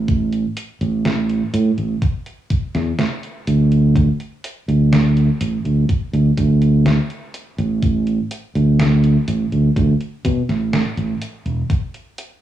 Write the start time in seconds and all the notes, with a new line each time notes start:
Already playing: A1
0.08 kick, closed hi-hat
0.33 closed hi-hat
0.57 closed hi-hat
0.81 A1, closed hi-hat
1.05 snare, closed hi-hat
1.29 closed hi-hat
1.54 A2, closed hi-hat
1.78 A1, closed hi-hat
2.02 kick, closed hi-hat
2.26 closed hi-hat
2.50 kick, closed hi-hat
2.75 E2, snare, closed hi-hat
2.99 snare, closed hi-hat
3.23 closed hi-hat
3.47 D2, closed hi-hat
3.72 closed hi-hat
3.96 kick, closed hi-hat
4.20 closed hi-hat
4.44 closed hi-hat
4.68 D2, closed hi-hat
4.93 snare, closed hi-hat
5.17 closed hi-hat
5.41 A1, closed hi-hat
5.65 D2, closed hi-hat
5.89 kick, closed hi-hat
6.13 D2, closed hi-hat
6.38 D2, kick, closed hi-hat
6.62 closed hi-hat
6.86 snare, closed hi-hat
7.10 closed hi-hat
7.34 closed hi-hat
7.59 A1, closed hi-hat
7.83 kick, closed hi-hat
8.07 closed hi-hat
8.31 closed hi-hat
8.55 D2, closed hi-hat
8.79 snare, closed hi-hat
9.04 closed hi-hat
9.28 A1, closed hi-hat
9.52 D2, closed hi-hat
9.76 D2, kick, closed hi-hat
10.01 closed hi-hat
10.25 B2, kick, closed hi-hat
10.49 A1, snare, closed hi-hat
10.73 snare, closed hi-hat
10.97 A1, closed hi-hat
11.22 closed hi-hat
11.46 E1, closed hi-hat
11.70 kick, closed hi-hat
11.94 closed hi-hat
12.18 closed hi-hat